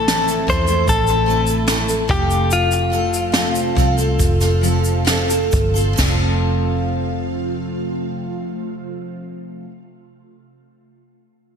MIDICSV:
0, 0, Header, 1, 6, 480
1, 0, Start_track
1, 0, Key_signature, -1, "major"
1, 0, Tempo, 805369
1, 1491, Tempo, 846262
1, 1492, Time_signature, 4, 2, 24, 8
1, 2451, Tempo, 895522
1, 3411, Tempo, 925926
1, 6303, End_track
2, 0, Start_track
2, 0, Title_t, "Clean electric guitar"
2, 0, Program_c, 0, 27
2, 0, Note_on_c, 0, 69, 110
2, 294, Note_off_c, 0, 69, 0
2, 296, Note_on_c, 0, 72, 102
2, 529, Note_off_c, 0, 72, 0
2, 532, Note_on_c, 0, 69, 104
2, 1253, Note_off_c, 0, 69, 0
2, 1256, Note_on_c, 0, 67, 83
2, 1503, Note_off_c, 0, 67, 0
2, 1505, Note_on_c, 0, 65, 81
2, 2910, Note_off_c, 0, 65, 0
2, 6303, End_track
3, 0, Start_track
3, 0, Title_t, "Steel-string acoustic guitar"
3, 0, Program_c, 1, 25
3, 48, Note_on_c, 1, 45, 81
3, 51, Note_on_c, 1, 52, 79
3, 55, Note_on_c, 1, 57, 76
3, 55, Note_on_c, 1, 60, 88
3, 59, Note_on_c, 1, 64, 74
3, 62, Note_on_c, 1, 69, 83
3, 271, Note_off_c, 1, 57, 0
3, 278, Note_on_c, 1, 57, 68
3, 279, Note_off_c, 1, 60, 0
3, 283, Note_off_c, 1, 64, 0
3, 285, Note_off_c, 1, 45, 0
3, 286, Note_off_c, 1, 52, 0
3, 287, Note_on_c, 1, 60, 71
3, 290, Note_off_c, 1, 69, 0
3, 290, Note_on_c, 1, 64, 69
3, 297, Note_on_c, 1, 69, 72
3, 387, Note_off_c, 1, 69, 0
3, 393, Note_off_c, 1, 64, 0
3, 394, Note_on_c, 1, 69, 61
3, 400, Note_on_c, 1, 64, 59
3, 401, Note_off_c, 1, 57, 0
3, 405, Note_off_c, 1, 60, 0
3, 411, Note_on_c, 1, 60, 46
3, 414, Note_on_c, 1, 57, 53
3, 633, Note_off_c, 1, 69, 0
3, 640, Note_on_c, 1, 69, 62
3, 641, Note_off_c, 1, 64, 0
3, 646, Note_off_c, 1, 60, 0
3, 647, Note_off_c, 1, 57, 0
3, 647, Note_on_c, 1, 64, 49
3, 654, Note_on_c, 1, 60, 53
3, 659, Note_on_c, 1, 57, 47
3, 745, Note_off_c, 1, 57, 0
3, 752, Note_on_c, 1, 57, 68
3, 753, Note_off_c, 1, 60, 0
3, 760, Note_on_c, 1, 60, 61
3, 761, Note_off_c, 1, 64, 0
3, 761, Note_off_c, 1, 69, 0
3, 768, Note_on_c, 1, 64, 71
3, 773, Note_on_c, 1, 69, 64
3, 993, Note_on_c, 1, 45, 75
3, 995, Note_off_c, 1, 57, 0
3, 996, Note_off_c, 1, 60, 0
3, 998, Note_off_c, 1, 64, 0
3, 1000, Note_on_c, 1, 52, 77
3, 1001, Note_off_c, 1, 69, 0
3, 1002, Note_on_c, 1, 57, 81
3, 1004, Note_on_c, 1, 60, 78
3, 1006, Note_on_c, 1, 64, 81
3, 1008, Note_on_c, 1, 69, 92
3, 1106, Note_off_c, 1, 69, 0
3, 1113, Note_on_c, 1, 69, 56
3, 1115, Note_off_c, 1, 64, 0
3, 1120, Note_off_c, 1, 45, 0
3, 1122, Note_off_c, 1, 60, 0
3, 1122, Note_on_c, 1, 64, 53
3, 1123, Note_off_c, 1, 52, 0
3, 1124, Note_off_c, 1, 57, 0
3, 1129, Note_on_c, 1, 60, 52
3, 1135, Note_on_c, 1, 57, 39
3, 1235, Note_off_c, 1, 57, 0
3, 1236, Note_off_c, 1, 60, 0
3, 1238, Note_on_c, 1, 53, 80
3, 1241, Note_off_c, 1, 64, 0
3, 1241, Note_off_c, 1, 69, 0
3, 1243, Note_on_c, 1, 60, 75
3, 1243, Note_on_c, 1, 65, 98
3, 1715, Note_off_c, 1, 53, 0
3, 1717, Note_on_c, 1, 53, 58
3, 1723, Note_off_c, 1, 60, 0
3, 1725, Note_on_c, 1, 60, 57
3, 1730, Note_off_c, 1, 65, 0
3, 1732, Note_on_c, 1, 65, 74
3, 1737, Note_on_c, 1, 69, 69
3, 1949, Note_off_c, 1, 53, 0
3, 1956, Note_on_c, 1, 53, 89
3, 1957, Note_off_c, 1, 60, 0
3, 1961, Note_off_c, 1, 65, 0
3, 1964, Note_off_c, 1, 69, 0
3, 1964, Note_on_c, 1, 60, 77
3, 1968, Note_on_c, 1, 65, 86
3, 1970, Note_on_c, 1, 69, 83
3, 2193, Note_off_c, 1, 53, 0
3, 2200, Note_on_c, 1, 53, 62
3, 2201, Note_off_c, 1, 60, 0
3, 2207, Note_off_c, 1, 65, 0
3, 2208, Note_on_c, 1, 60, 77
3, 2210, Note_off_c, 1, 69, 0
3, 2214, Note_on_c, 1, 65, 77
3, 2218, Note_on_c, 1, 69, 72
3, 2316, Note_off_c, 1, 69, 0
3, 2323, Note_on_c, 1, 69, 59
3, 2326, Note_off_c, 1, 53, 0
3, 2330, Note_off_c, 1, 60, 0
3, 2331, Note_off_c, 1, 65, 0
3, 2338, Note_on_c, 1, 65, 60
3, 2344, Note_on_c, 1, 60, 55
3, 2558, Note_off_c, 1, 69, 0
3, 2564, Note_on_c, 1, 69, 57
3, 2567, Note_off_c, 1, 65, 0
3, 2573, Note_on_c, 1, 65, 60
3, 2576, Note_off_c, 1, 60, 0
3, 2582, Note_on_c, 1, 60, 48
3, 2675, Note_on_c, 1, 53, 64
3, 2678, Note_off_c, 1, 60, 0
3, 2681, Note_off_c, 1, 65, 0
3, 2684, Note_off_c, 1, 69, 0
3, 2684, Note_on_c, 1, 60, 65
3, 2688, Note_on_c, 1, 65, 73
3, 2697, Note_on_c, 1, 69, 74
3, 2902, Note_off_c, 1, 53, 0
3, 2908, Note_off_c, 1, 60, 0
3, 2908, Note_on_c, 1, 53, 83
3, 2912, Note_off_c, 1, 65, 0
3, 2914, Note_on_c, 1, 60, 85
3, 2916, Note_off_c, 1, 69, 0
3, 2918, Note_on_c, 1, 65, 86
3, 2922, Note_on_c, 1, 69, 92
3, 3027, Note_off_c, 1, 69, 0
3, 3033, Note_on_c, 1, 69, 68
3, 3037, Note_off_c, 1, 53, 0
3, 3037, Note_off_c, 1, 65, 0
3, 3040, Note_off_c, 1, 60, 0
3, 3044, Note_on_c, 1, 65, 57
3, 3052, Note_on_c, 1, 60, 58
3, 3272, Note_off_c, 1, 69, 0
3, 3278, Note_on_c, 1, 69, 74
3, 3282, Note_off_c, 1, 65, 0
3, 3288, Note_on_c, 1, 65, 68
3, 3292, Note_off_c, 1, 60, 0
3, 3298, Note_on_c, 1, 60, 55
3, 3383, Note_on_c, 1, 53, 87
3, 3407, Note_off_c, 1, 69, 0
3, 3412, Note_off_c, 1, 65, 0
3, 3414, Note_off_c, 1, 60, 0
3, 3420, Note_on_c, 1, 60, 88
3, 3449, Note_on_c, 1, 65, 88
3, 3474, Note_on_c, 1, 69, 90
3, 5295, Note_off_c, 1, 53, 0
3, 5331, Note_off_c, 1, 60, 0
3, 5361, Note_off_c, 1, 65, 0
3, 5385, Note_off_c, 1, 69, 0
3, 6303, End_track
4, 0, Start_track
4, 0, Title_t, "Ambient pad"
4, 0, Program_c, 2, 92
4, 0, Note_on_c, 2, 48, 79
4, 0, Note_on_c, 2, 57, 70
4, 0, Note_on_c, 2, 64, 83
4, 1225, Note_off_c, 2, 48, 0
4, 1227, Note_off_c, 2, 64, 0
4, 1251, Note_on_c, 2, 48, 78
4, 1253, Note_on_c, 2, 65, 84
4, 3394, Note_off_c, 2, 48, 0
4, 3395, Note_off_c, 2, 57, 0
4, 3395, Note_off_c, 2, 65, 0
4, 3411, Note_on_c, 2, 48, 84
4, 3411, Note_on_c, 2, 57, 67
4, 3413, Note_on_c, 2, 65, 91
4, 5302, Note_off_c, 2, 48, 0
4, 5302, Note_off_c, 2, 57, 0
4, 5303, Note_off_c, 2, 65, 0
4, 6303, End_track
5, 0, Start_track
5, 0, Title_t, "Fingered electric bass"
5, 0, Program_c, 3, 33
5, 0, Note_on_c, 3, 33, 90
5, 264, Note_off_c, 3, 33, 0
5, 286, Note_on_c, 3, 40, 90
5, 504, Note_off_c, 3, 40, 0
5, 522, Note_on_c, 3, 33, 105
5, 1222, Note_off_c, 3, 33, 0
5, 1246, Note_on_c, 3, 29, 88
5, 2185, Note_off_c, 3, 29, 0
5, 2207, Note_on_c, 3, 36, 96
5, 2432, Note_off_c, 3, 36, 0
5, 2452, Note_on_c, 3, 29, 99
5, 3145, Note_off_c, 3, 29, 0
5, 3167, Note_on_c, 3, 31, 100
5, 3393, Note_off_c, 3, 31, 0
5, 3411, Note_on_c, 3, 29, 98
5, 5302, Note_off_c, 3, 29, 0
5, 6303, End_track
6, 0, Start_track
6, 0, Title_t, "Drums"
6, 47, Note_on_c, 9, 38, 125
6, 54, Note_on_c, 9, 82, 68
6, 55, Note_off_c, 9, 82, 0
6, 55, Note_on_c, 9, 82, 66
6, 107, Note_off_c, 9, 38, 0
6, 115, Note_off_c, 9, 82, 0
6, 167, Note_on_c, 9, 82, 55
6, 169, Note_off_c, 9, 82, 0
6, 169, Note_on_c, 9, 82, 52
6, 229, Note_off_c, 9, 82, 0
6, 287, Note_on_c, 9, 36, 104
6, 294, Note_on_c, 9, 82, 46
6, 346, Note_off_c, 9, 36, 0
6, 353, Note_off_c, 9, 82, 0
6, 401, Note_on_c, 9, 82, 51
6, 409, Note_off_c, 9, 82, 0
6, 409, Note_on_c, 9, 82, 44
6, 469, Note_off_c, 9, 82, 0
6, 522, Note_on_c, 9, 36, 89
6, 524, Note_on_c, 9, 82, 79
6, 529, Note_off_c, 9, 82, 0
6, 529, Note_on_c, 9, 82, 70
6, 582, Note_off_c, 9, 36, 0
6, 588, Note_off_c, 9, 82, 0
6, 636, Note_on_c, 9, 82, 43
6, 643, Note_off_c, 9, 82, 0
6, 643, Note_on_c, 9, 82, 52
6, 703, Note_off_c, 9, 82, 0
6, 774, Note_on_c, 9, 82, 53
6, 834, Note_off_c, 9, 82, 0
6, 875, Note_on_c, 9, 82, 55
6, 888, Note_off_c, 9, 82, 0
6, 888, Note_on_c, 9, 82, 50
6, 947, Note_off_c, 9, 82, 0
6, 999, Note_on_c, 9, 38, 112
6, 1003, Note_on_c, 9, 82, 70
6, 1013, Note_off_c, 9, 82, 0
6, 1013, Note_on_c, 9, 82, 69
6, 1058, Note_off_c, 9, 38, 0
6, 1072, Note_off_c, 9, 82, 0
6, 1124, Note_on_c, 9, 82, 61
6, 1133, Note_off_c, 9, 82, 0
6, 1133, Note_on_c, 9, 82, 51
6, 1193, Note_off_c, 9, 82, 0
6, 1246, Note_on_c, 9, 36, 122
6, 1306, Note_off_c, 9, 36, 0
6, 1373, Note_on_c, 9, 82, 54
6, 1380, Note_off_c, 9, 82, 0
6, 1380, Note_on_c, 9, 82, 50
6, 1440, Note_off_c, 9, 82, 0
6, 1495, Note_on_c, 9, 82, 72
6, 1497, Note_off_c, 9, 82, 0
6, 1497, Note_on_c, 9, 82, 79
6, 1554, Note_off_c, 9, 82, 0
6, 1611, Note_on_c, 9, 82, 52
6, 1615, Note_off_c, 9, 82, 0
6, 1615, Note_on_c, 9, 82, 55
6, 1672, Note_off_c, 9, 82, 0
6, 1733, Note_on_c, 9, 82, 54
6, 1790, Note_off_c, 9, 82, 0
6, 1849, Note_on_c, 9, 82, 47
6, 1852, Note_off_c, 9, 82, 0
6, 1852, Note_on_c, 9, 82, 56
6, 1908, Note_off_c, 9, 82, 0
6, 1964, Note_on_c, 9, 38, 127
6, 1970, Note_on_c, 9, 82, 61
6, 1973, Note_off_c, 9, 82, 0
6, 1973, Note_on_c, 9, 82, 70
6, 2020, Note_off_c, 9, 38, 0
6, 2030, Note_off_c, 9, 82, 0
6, 2086, Note_on_c, 9, 82, 54
6, 2088, Note_off_c, 9, 82, 0
6, 2088, Note_on_c, 9, 82, 57
6, 2144, Note_off_c, 9, 82, 0
6, 2208, Note_on_c, 9, 36, 101
6, 2216, Note_on_c, 9, 82, 48
6, 2265, Note_off_c, 9, 36, 0
6, 2273, Note_off_c, 9, 82, 0
6, 2330, Note_on_c, 9, 82, 49
6, 2331, Note_off_c, 9, 82, 0
6, 2331, Note_on_c, 9, 82, 48
6, 2388, Note_off_c, 9, 82, 0
6, 2450, Note_on_c, 9, 82, 67
6, 2451, Note_on_c, 9, 36, 93
6, 2455, Note_off_c, 9, 82, 0
6, 2455, Note_on_c, 9, 82, 68
6, 2505, Note_off_c, 9, 36, 0
6, 2509, Note_off_c, 9, 82, 0
6, 2566, Note_on_c, 9, 38, 38
6, 2566, Note_on_c, 9, 82, 45
6, 2619, Note_off_c, 9, 38, 0
6, 2620, Note_off_c, 9, 82, 0
6, 2688, Note_on_c, 9, 82, 61
6, 2690, Note_off_c, 9, 82, 0
6, 2690, Note_on_c, 9, 82, 50
6, 2743, Note_off_c, 9, 82, 0
6, 2798, Note_on_c, 9, 82, 54
6, 2802, Note_off_c, 9, 82, 0
6, 2802, Note_on_c, 9, 82, 50
6, 2855, Note_off_c, 9, 82, 0
6, 2921, Note_on_c, 9, 38, 122
6, 2923, Note_on_c, 9, 82, 68
6, 2924, Note_off_c, 9, 82, 0
6, 2924, Note_on_c, 9, 82, 78
6, 2974, Note_off_c, 9, 38, 0
6, 2978, Note_off_c, 9, 82, 0
6, 3044, Note_on_c, 9, 82, 52
6, 3045, Note_off_c, 9, 82, 0
6, 3045, Note_on_c, 9, 82, 61
6, 3099, Note_off_c, 9, 82, 0
6, 3159, Note_on_c, 9, 82, 53
6, 3165, Note_off_c, 9, 82, 0
6, 3165, Note_on_c, 9, 82, 52
6, 3166, Note_on_c, 9, 36, 109
6, 3219, Note_off_c, 9, 82, 0
6, 3220, Note_off_c, 9, 36, 0
6, 3286, Note_on_c, 9, 82, 54
6, 3293, Note_off_c, 9, 82, 0
6, 3293, Note_on_c, 9, 82, 61
6, 3346, Note_off_c, 9, 82, 0
6, 3406, Note_on_c, 9, 82, 96
6, 3410, Note_on_c, 9, 38, 87
6, 3410, Note_on_c, 9, 49, 84
6, 3411, Note_on_c, 9, 36, 102
6, 3458, Note_off_c, 9, 82, 0
6, 3462, Note_off_c, 9, 38, 0
6, 3462, Note_off_c, 9, 49, 0
6, 3463, Note_off_c, 9, 36, 0
6, 6303, End_track
0, 0, End_of_file